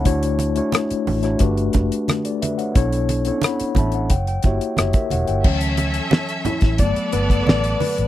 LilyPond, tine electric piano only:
\new Staff \with { instrumentName = "Tine electric piano" } { \time 4/4 \key d \major \tempo 4 = 89 << { fis''16 r2. <a' d''>16 <b' e''>16 <cis'' fis''>16~ | <cis'' fis''>16 r8. <fis'' b''>8 <e'' a'' b''>16 <cis'' fis''>16 g''16 g''16 e''8 <g' cis'' e''>16 <ais' e''>16 <cis'' fis''>16 <cis'' g''>16~ | <cis'' g''>16 r4 r16 e'8 d''8 b'8 d''8 b'8 | } \\ { <a d' e' fis' cis''>8. <a d' e' fis' cis''>8. r16 <a d' e' fis' cis''>16 <a d' fis' g' b'>4.~ <a d' fis' g' b'>16 r16 | <b d' e' a' cis''>8. <b cis' d' e' a' cis''>8. r4 <ais e' fis' g' cis''>8. r8. | <e fis cis'>4. r8 <fis a b>4. r8 | } >> }